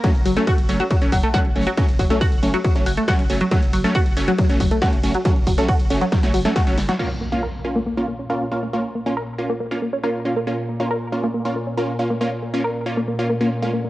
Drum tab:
CC |----------------|----------------|----------------|----------------|
RD |x---x---x---x---|x---x---x---x---|x---x---x---x---|x---x---x---x---|
HH |xxoxxxoxxxoxxxox|xxoxxxoxxxoxxxox|xxoxxxoxxxoxxxox|xxoxxxoxxxoxxxox|
SD |------------o---|------------o---|------------o---|--------oo-oo-oo|
BD |o---o---o-o-o---|o-o-o---o---o---|o---o---o-o-o---|o-o-o---o---o---|

CC |x---------------|----------------|----------------|----------------|
RD |----------------|----------------|----------------|----------------|
HH |----------------|----------------|----------------|----------------|
SD |----------------|----------------|----------------|----------------|
BD |----------------|----------------|----------------|----------------|